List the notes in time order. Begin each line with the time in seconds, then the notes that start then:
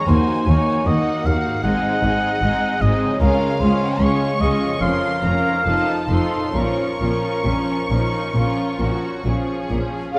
Already playing: D#3 A#3
0.00 D#4 F#4
0.07 D#2 A#3 D#4 F#4 C5 G#5
0.46 D#2 A#3 D#4 F#4 C#5
0.86 D#2 A#3 D#4 F#4 D#5 F#5
1.25 D#2 A#3 D#4 F#4 F5
1.47 G#2
1.52 C4
1.56 D#4
1.60 G#1 G#4 F#5
1.64 G#2 G#3 C4 D#4 G#4 D#5
2.03 G#1 G#2 G#3 C4 D#4 G#4
2.42 G#1 G#2 G#3 C4 D#4 G#4
2.81 G#1 G#2 G#3 C4 D#4 G#4 D#5
3.03 C#3
3.08 C#4
3.12 F4
3.17 G#4 A#4
3.21 C#2 G#3 C#4 F4 G#4 F5
3.60 C#2 G#3 C#4 F4 G#4 C5
3.99 C#2 G#3 C#4 F4 G#4 C#5 C#6
4.39 C#2 G#3 C#4 F4 G#4 D#5
4.64 F2
4.68 C#4
4.72 F4
4.77 F2 F3 A#4 F5
4.82 F1 C#4 F4 A#4 C6
5.24 F1 F2 F3 C#4 F4 A#4 A#5
5.47 F2
5.51 D#4
5.56 F4
5.61 F4 A4
5.65 F1 F2 F3 D#4 A4 A5
6.09 F1 F2 F3 D#4 F4 A4 C6
6.36 A#2
6.40 C#4
6.45 F4
6.49 A#4
6.54 A#1 A#2 F3 C#4 F4 A#4 C#6
7.00 A#1 A#2 F3 C#4 F4 A#4
7.45 A#1 A#2 F3 C#4
7.90 A#1 A#2 F3 C#4 D#4
8.35 A#1 A#2 F3 C#4 F4
8.79 A#1 A#2 F3 C#4 F#4
9.25 A#1 A#2 F3 C#4 G#4
9.71 A#1 A#2 F3 C#4
10.14 F4 F5